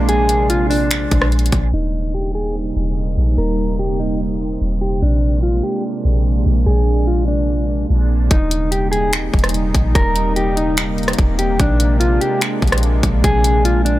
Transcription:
Already playing: A#1 C3 G#3 A#3 D4 C5
0.09 G#4, closed hi-hat
0.29 closed hi-hat
0.50 F4, closed hi-hat
0.70 D4, open hi-hat
0.91 finger snap, closed hi-hat
1.11 A#1, kick, closed hi-hat
1.22 cross-stick
1.32 closed hi-hat
1.39 closed hi-hat
1.46 closed hi-hat
1.52 A#1, kick, closed hi-hat
1.73 D#1 C3 G3 A#3 D#4 C5
2.14 G4
2.35 G#4
2.76 D#1
3.17 A#1
3.38 D#1 A#4
3.79 G4
4.00 D#4
4.61 D#1
4.81 G4
5.02 A#1 G#3 A#3 D4
5.43 F4
5.63 G4
6.05 A#1
6.46 A#1
6.66 A#1 G#4
7.07 F4
7.28 D4
7.90 A#1
8.31 C3 G3 A#3 D#4, kick, closed hi-hat
8.51 closed hi-hat
8.72 G4, closed hi-hat
8.92 G#4, closed hi-hat
9.13 finger snap, closed hi-hat
9.34 D#1, kick, closed hi-hat
9.39 closed hi-hat
9.44 cross-stick, closed hi-hat
9.49 closed hi-hat
9.54 closed hi-hat
9.75 A#1, kick, closed hi-hat
9.95 D#1 A#4, kick, closed hi-hat
10.16 closed hi-hat
10.36 G4, closed hi-hat
10.57 D#4, closed hi-hat
10.77 finger snap, closed hi-hat
10.98 closed hi-hat
11.03 closed hi-hat
11.08 cross-stick, closed hi-hat
11.13 closed hi-hat
11.19 D#1, kick, closed hi-hat
11.39 G4, closed hi-hat
11.60 A#1 G#3 D4, kick, closed hi-hat
11.80 closed hi-hat
12.00 F4, closed hi-hat
12.21 G4, closed hi-hat
12.41 finger snap, closed hi-hat
12.62 A#1, kick, closed hi-hat
12.67 closed hi-hat
12.72 cross-stick, closed hi-hat
12.78 closed hi-hat
12.83 closed hi-hat
13.03 A#1, kick, closed hi-hat
13.24 A#1 G#4, kick, closed hi-hat
13.44 closed hi-hat
13.65 F4, closed hi-hat
13.85 D4, closed hi-hat

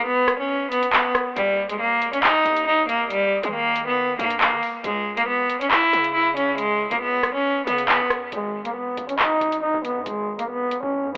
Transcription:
0.06 B3
0.28 cross-stick, closed hi-hat
0.39 C#4
0.71 B3, closed hi-hat
0.83 closed hi-hat
0.93 B3, clap
1.15 cross-stick, closed hi-hat
1.36 D#2 G3, closed hi-hat
1.69 G#3, closed hi-hat
1.80 A#3
2.02 closed hi-hat
2.13 C#4, closed hi-hat
2.23 D#4, clap
2.45 D#2, closed hi-hat
2.57 closed hi-hat
2.67 D#4
2.89 A#3, closed hi-hat
3.10 G3, closed hi-hat
3.43 D#3 G#3, closed hi-hat
3.54 A#3
3.76 closed hi-hat
3.87 B3
4.19 G2 A#3, closed hi-hat
4.30 closed hi-hat
4.41 A#3, clap
4.52 D#3
4.63 open hi-hat
4.84 C#2 G#3, closed hi-hat
5.17 A#3, closed hi-hat
5.28 B3
5.50 closed hi-hat
5.61 C#4, closed hi-hat
5.71 E4, clap
5.93 C#3, closed hi-hat
6.04 closed hi-hat
6.15 E4
6.36 C#4, closed hi-hat
6.58 G#3, closed hi-hat
6.91 C#2 A#3, closed hi-hat
7.02 B3
7.23 B1, cross-stick, closed hi-hat
7.35 C#4
7.67 C#3 B3, closed hi-hat
7.78 closed hi-hat
7.89 B3, clap
8.00 E2
8.10 cross-stick, closed hi-hat
8.32 G#1 G#3, closed hi-hat
8.65 A#3, closed hi-hat
8.76 B3
8.97 G#1, closed hi-hat
9.09 C#4, closed hi-hat
9.19 D#4, clap
9.41 G#1, closed hi-hat
9.52 closed hi-hat
9.62 D#4
9.74 G#1
9.84 B3, closed hi-hat
9.96 G#2
10.06 G#1 G#3, closed hi-hat
10.39 A#3, closed hi-hat
10.49 B3
10.71 closed hi-hat
10.83 G#1 C#4
11.04 G#2

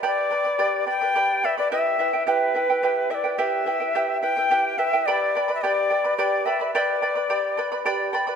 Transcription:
0.03 G4 B4 D5 G5 B5
0.31 B4 D5 G5 B5
0.45 B4 D5 B5
0.59 G4 B4 D5 G5 B5
0.87 B4 D5 G5 B5
1.01 B4 D5 B5
1.15 G4 B4 D5 G5 B5
1.43 B4 D5 E5 G5 B5
1.58 B4 D5 B5
1.72 E4 G4 B4 E5 G5
1.99 E4 B4 E5 G5
2.13 E4 B4 G5
2.27 E4 G4 B4 E5 G5
2.55 E4 B4 E5 G5
2.70 E4 B4 G5
2.83 E4 G4 B4 E5 G5
3.10 E4 B4 E5 G5
3.15 D5
3.24 E4 B4 G5
3.38 E4 G4 B4 E5 G5
3.66 E4 B4 E5 G5
3.80 E4 B4 G5
3.95 E4 G4 B4 E5 G5
4.21 E4 B4 E5 G5
4.37 E4 B4 G5
4.51 E4 G4 B4 E5 G5
4.78 E4 B4 E5 G5
4.93 E4 B4 G5
5.06 G4 B4 D5 G5 B5
5.35 B4 D5 G5 B5
5.48 B4 D5 B5
5.55 E5
5.62 G4 B4 D5 G5 B5
5.90 B4 D5 G5 B5
6.05 B4 D5 B5
6.18 G4 B4 D5 G5 B5
6.46 B4 D5 E5 G5 B5
6.60 B4 D5 B5
6.75 G4 B4 D5 E5 G5 B5
6.80 D5
7.02 B4 D5 G5 B5
7.16 B4 D5 B5
7.30 G4 B4 D5 G5 B5
7.57 B4 D5 G5 B5
7.72 B4 D5 B5
7.85 G4 B4 D5 G5 B5
8.13 B4 D5 G5 B5
8.27 B4 D5 B5

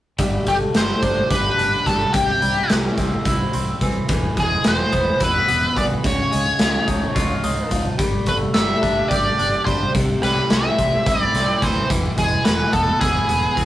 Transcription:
0.18 G1 G3, kick, closed hi-hat
0.47 G1 A3 G4, kick, closed hi-hat
0.74 G1 G3 C5, snare, closed hi-hat
1.02 G1 D4, kick, closed hi-hat
1.30 G1 G4 B4, kick, closed hi-hat
1.58 G1 D4, closed hi-hat
1.86 G1 G3 A4, kick, snare, closed hi-hat
2.14 C2 C3 G4, kick, closed hi-hat
2.42 C2 G3, closed hi-hat
2.70 C2 E3, snare, closed hi-hat
2.98 C2 C4, kick, snare, closed hi-hat
3.25 C2 E4, kick, closed hi-hat
3.53 C2 C4, closed hi-hat
3.81 C2 E3, kick, closed hi-hat
4.08 E1 E3, kick, closed hi-hat
4.37 E1 G#3 G#4, kick, closed hi-hat
4.64 E1 E3 C5, snare, closed hi-hat
4.92 E1 B3, kick, closed hi-hat
5.20 E1 E4 B4, kick, closed hi-hat
5.48 E1 B3, closed hi-hat
5.76 C2 E3 D5, kick, closed hi-hat
6.04 C#2 C#3 C#5, kick, closed hi-hat
6.31 C#2 G#3, closed hi-hat
6.59 C#2 F3, snare, closed hi-hat
6.87 C#2 D#4, kick, closed hi-hat
7.15 C#2 F4, kick, closed hi-hat
7.44 C#2 D#4, closed hi-hat
7.71 C#2 F3, kick, closed hi-hat
7.98 G1 G3, kick, closed hi-hat
8.26 G1 A3 B4, kick, closed hi-hat
8.54 G1 G3 E5, snare, closed hi-hat
8.82 G1 D4, kick, snare, closed hi-hat
9.08 G1 G4 D5, kick, closed hi-hat
9.39 G1 D4, closed hi-hat
9.65 G1 G3 C5, kick, closed hi-hat
9.95 C2 C3, kick, closed hi-hat
10.23 C2 G3 B4, snare, closed hi-hat
10.50 C2 E3 E5, snare, closed hi-hat
10.79 C2 C4, kick, closed hi-hat
11.06 C2 E4 D5, kick, snare, closed hi-hat
11.34 C2 C4, snare, closed hi-hat
11.62 D2 E3 C5, kick, snare, closed hi-hat
11.90 E1 E3, kick, closed hi-hat
12.18 E1 G#3 G#4, kick, closed hi-hat
12.45 E1 E3 B4, snare, closed hi-hat
12.73 E1 B3 A4, kick, closed hi-hat
13.01 E1 E4 G#4, kick, closed hi-hat
13.28 E1 B3, closed hi-hat
13.56 E1 E3, kick, closed hi-hat

